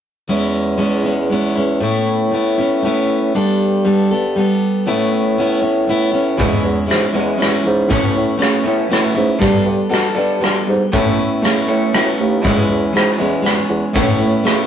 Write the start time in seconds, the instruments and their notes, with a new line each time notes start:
0.28 steel-string acoustic guitar E2 E3 G#3 B3 C#4 E4, bassoon E2
0.78 steel-string acoustic guitar G#3 B3 C#4 E4
1.03 steel-string acoustic guitar G#3 B3 C#4 E4
1.30 steel-string acoustic guitar G#3 B3 C#4 E4
1.55 steel-string acoustic guitar G#3 B3 C#4 E4
1.80 steel-string acoustic guitar A2 A3 B3 C#4 E4, bassoon A2
2.31 steel-string acoustic guitar A3 B3 C#4 E4
2.58 steel-string acoustic guitar B3 C#4 E4
2.83 steel-string acoustic guitar A3 B3 C#4 E4
3.35 bassoon G2, steel-string acoustic guitar G3 B3 D4 A4
3.85 steel-string acoustic guitar G3 B3 D4 A4
4.11 steel-string acoustic guitar B3 D4 A4
4.36 steel-string acoustic guitar G3 B3 D4 A4
4.86 steel-string acoustic guitar A2 A3 B3 C#4 E4, bassoon A2
5.38 steel-string acoustic guitar A3 B3 C#4 E4
5.61 steel-string acoustic guitar B3 C#4 E4
5.87 steel-string acoustic guitar A3 B3 C#4 E4
6.12 steel-string acoustic guitar B3 C#4 E4
6.37 steel-string acoustic guitar E2 E3 G#3 B3 C#4 E4, clean electric guitar E2 E3 G#3, bassoon E2, kick, closed hi-hat
6.64 bassoon E2, clean electric guitar E2 E3
6.86 bassoon G#2, steel-string acoustic guitar G#3 B3 C#4 E4
6.90 clean electric guitar E2 E3, cross-stick, closed hi-hat
7.13 clean electric guitar E2 E3 G#3, bassoon E2, steel-string acoustic guitar G#3 B3 C#4 E4
7.38 clean electric guitar E2 E3, bassoon E2, steel-string acoustic guitar G#3 B3 C#4 E4, closed hi-hat
7.42 cross-stick
7.64 clean electric guitar E2 E3, bassoon G#2
7.89 steel-string acoustic guitar A2 A3 B3 C#4 E4, clean electric guitar A2 A3 C#4, bassoon A2, kick, closed hi-hat
8.15 clean electric guitar A2 A3, bassoon A2
8.37 clean electric guitar A2 A3, steel-string acoustic guitar A3 B3 C#4 E4, closed hi-hat
8.42 bassoon C#3, cross-stick
8.64 clean electric guitar A2 A3 C#4, bassoon A2, steel-string acoustic guitar B3 C#4 E4
8.88 clean electric guitar A2 A3, bassoon A2, steel-string acoustic guitar A3 B3 C#4 E4
8.92 cross-stick, closed hi-hat
9.15 bassoon G#2, clean electric guitar A2 A3, steel-string acoustic guitar B3 C#4 E4
9.39 bassoon G2, clean electric guitar G3 B3 D4, steel-string acoustic guitar G3 B3 D4 A4, kick, closed hi-hat
9.65 bassoon G2, clean electric guitar G3 D4
9.89 bassoon B2, steel-string acoustic guitar G3 B3 D4 A4, clean electric guitar G3 D4, closed hi-hat
9.94 cross-stick
10.15 bassoon G2, clean electric guitar G3 B3 D4, steel-string acoustic guitar B3 D4 A4
10.40 bassoon G2, steel-string acoustic guitar G3 B3 D4 A4, clean electric guitar G3 D4, cross-stick, closed hi-hat
10.67 bassoon G#2, clean electric guitar G3 D4
10.92 steel-string acoustic guitar A2 A3 B3 C#4 E4, clean electric guitar A2 A3 C#4, bassoon A2, kick, closed hi-hat
11.18 clean electric guitar A2 A3
11.42 clean electric guitar A2 A3, bassoon C#3, steel-string acoustic guitar A3 B3 C#4 E4, cross-stick, closed hi-hat
11.67 clean electric guitar A2 A3 C#4, bassoon A2
11.93 clean electric guitar A2 A3, bassoon A2, steel-string acoustic guitar A3 B3 C#4 E4, cross-stick, closed hi-hat
12.18 bassoon D#2, clean electric guitar A2 A3
12.42 clean electric guitar E2 E3 G#3, steel-string acoustic guitar E2 E3 G#3 B3 C#4 E4, bassoon E2, kick, closed hi-hat
12.68 clean electric guitar E2 E3, bassoon E2
12.93 clean electric guitar E2 E3, bassoon G#2, steel-string acoustic guitar G#3 B3 C#4 E4, cross-stick, closed hi-hat
13.17 clean electric guitar E2 E3 G#3, bassoon E2, steel-string acoustic guitar B3 C#4 E4
13.22 steel-string acoustic guitar G#3
13.42 clean electric guitar E2 E3, bassoon E2, steel-string acoustic guitar G#3 B3 C#4 E4, closed hi-hat
13.46 cross-stick
13.69 clean electric guitar E2 E3, bassoon E2
13.93 steel-string acoustic guitar A2 A3 B3 C#4 E4, clean electric guitar A2 A3 C#4, bassoon A2, kick, closed hi-hat
14.19 bassoon A2, clean electric guitar A2 A3
14.44 clean electric guitar A2 A3, bassoon C#3, steel-string acoustic guitar A3 B3 C#4 E4, cross-stick, closed hi-hat